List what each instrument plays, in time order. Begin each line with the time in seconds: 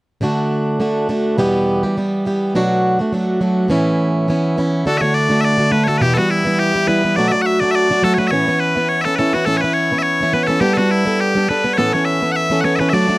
0.21 steel-string acoustic guitar D3 A3 D4 F#4
0.80 steel-string acoustic guitar D3 A3 D4 F#4
1.09 steel-string acoustic guitar D3 A3 D4 F#4
1.38 steel-string acoustic guitar E2 B2 E3 G3 B3 G4
1.83 steel-string acoustic guitar E3 G3 B3 G4
1.97 steel-string acoustic guitar E3 G3 B3 G4
2.25 steel-string acoustic guitar E3 G3 B3 G4
2.55 steel-string acoustic guitar B2 F#3 A3 D4 F#4
2.99 steel-string acoustic guitar A3 D4 F#4
3.13 steel-string acoustic guitar F#3 A3 D4 F#4
3.41 steel-string acoustic guitar F#3 A3 D4 F#4
3.68 steel-string acoustic guitar A2 E3 B3 C#4 E4
4.28 steel-string acoustic guitar E3 B3 C#4 E4
4.57 steel-string acoustic guitar E3 B3 C#4 E4
4.86 steel-string acoustic guitar D3 A3 D4 F#4, bagpipes A4
4.98 steel-string acoustic guitar D3, bagpipes C#5 E5
5.02 steel-string acoustic guitar A3 D4 F#4
5.14 bagpipes D5
5.30 steel-string acoustic guitar D3 A3 D4 F#4
5.41 bagpipes D5 E5
5.58 steel-string acoustic guitar D3 A3 D4 F#4
5.71 steel-string acoustic guitar D3 A3 D4 F#4, bagpipes B4
5.84 steel-string acoustic guitar D3, bagpipes A4 C#5
5.88 steel-string acoustic guitar A3 D4 F#4
5.97 steel-string acoustic guitar E2 B2, bagpipes B4
6.01 steel-string acoustic guitar E3 G3 B3 E4, bagpipes G4
6.14 steel-string acoustic guitar E3 G3 B3, bagpipes F#4 A4
6.18 steel-string acoustic guitar E4
6.30 bagpipes E4
6.45 steel-string acoustic guitar E3 G3 B3 E4
6.59 bagpipes G4
6.74 steel-string acoustic guitar E3 G3 B3 E4
6.87 steel-string acoustic guitar E3 G3 B3 E4, bagpipes B4
7.04 steel-string acoustic guitar E3 G3 B3 E4
7.16 steel-string acoustic guitar B2 F#3 A3 D4 F#4, bagpipes D5
7.28 bagpipes D5 E5
7.32 steel-string acoustic guitar F#3 A3 D4 F#4
7.42 bagpipes F#5
7.46 bagpipes E5
7.60 steel-string acoustic guitar F#3 A3 D4 F#4, bagpipes D5
7.71 bagpipes E5
7.75 bagpipes D5
7.90 steel-string acoustic guitar F#3 A3 D4 F#4
8.03 steel-string acoustic guitar F#3 A3 D4 F#4, bagpipes A4
8.14 bagpipes C#5
8.18 steel-string acoustic guitar F#3 A3 D4 F#4, bagpipes B4
8.27 bagpipes C#5 E5
8.32 steel-string acoustic guitar A2 E3 B3 C#4 E4
8.47 steel-string acoustic guitar E3 B3 C#4 E4
8.60 bagpipes B4
8.76 steel-string acoustic guitar E3 B3 C#4 E4
8.89 bagpipes C#5
9.01 steel-string acoustic guitar E3, bagpipes A4 E5
9.06 steel-string acoustic guitar B3 C#4 E4
9.15 steel-string acoustic guitar E3 B3 C#4, bagpipes A4 B4
9.20 steel-string acoustic guitar E4
9.33 steel-string acoustic guitar E3 B3 C#4 E4, bagpipes F#4
9.46 steel-string acoustic guitar A2 E3 B3 C#4 E4, bagpipes A4
9.57 bagpipes B4 C#5
9.63 steel-string acoustic guitar E3 B3 C#4 E4
9.73 bagpipes C#5
9.91 steel-string acoustic guitar E3 B3 C#4 E4
9.99 bagpipes E5
10.03 bagpipes C#5
10.21 steel-string acoustic guitar E3 B3 C#4 E4
10.33 steel-string acoustic guitar E3 B3 C#4 E4, bagpipes B4
10.43 bagpipes A4 C#5
10.48 steel-string acoustic guitar E3 B3 C#4 E4
10.61 steel-string acoustic guitar G3 B3 D4 A4, bagpipes G4
10.74 steel-string acoustic guitar G3, bagpipes A4
10.78 steel-string acoustic guitar B3 D4 A4, bagpipes F#4
10.91 bagpipes E4
11.05 steel-string acoustic guitar G3 B3 D4 A4
11.20 bagpipes G4
11.35 steel-string acoustic guitar G3 B3 D4 A4
11.49 steel-string acoustic guitar G3 B3 D4 A4, bagpipes B4
11.64 steel-string acoustic guitar G3 B3 D4 A4
11.73 bagpipes C#5
11.78 steel-string acoustic guitar A2 E3 B3 C#4 A4, bagpipes A4
11.93 steel-string acoustic guitar E3 B3 C#4 A4, bagpipes C#5
12.05 bagpipes E5
12.22 steel-string acoustic guitar E3 B3 C#4 A4
12.32 bagpipes F#5
12.36 bagpipes E5
12.50 steel-string acoustic guitar E3 B3 C#4 A4
12.61 steel-string acoustic guitar E3 B3, bagpipes C#5 F#5
12.65 steel-string acoustic guitar C#4 A4
12.76 steel-string acoustic guitar E3, bagpipes B4 E5
12.80 steel-string acoustic guitar B3 C#4 A4
12.89 steel-string acoustic guitar D3 F#3, bagpipes E5
12.94 steel-string acoustic guitar A3 D4 F#4, bagpipes D5
13.08 steel-string acoustic guitar F#3 A3 D4 F#4